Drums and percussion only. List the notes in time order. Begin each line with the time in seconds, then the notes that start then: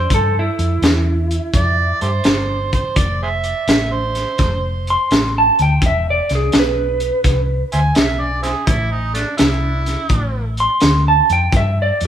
0.10 kick, closed hi-hat
0.59 closed hi-hat
0.83 snare, closed hi-hat
1.31 closed hi-hat
1.54 kick, closed hi-hat
2.01 closed hi-hat
2.24 snare, closed hi-hat
2.73 kick, closed hi-hat
2.96 kick, closed hi-hat
3.44 closed hi-hat
3.68 snare, closed hi-hat
4.15 snare, closed hi-hat
4.38 kick, snare, closed hi-hat
4.87 closed hi-hat
5.11 snare, closed hi-hat
5.59 closed hi-hat
5.82 kick, closed hi-hat
6.29 snare, closed hi-hat
6.52 snare, closed hi-hat
7.00 closed hi-hat
7.24 kick, snare, closed hi-hat
7.72 closed hi-hat
7.95 snare, closed hi-hat
8.44 snare, closed hi-hat
8.67 kick, closed hi-hat
9.15 snare, closed hi-hat
9.38 snare, closed hi-hat
9.86 snare, closed hi-hat
10.09 kick, closed hi-hat
10.57 closed hi-hat
10.80 snare, closed hi-hat
11.30 closed hi-hat
11.53 kick, closed hi-hat
12.01 closed hi-hat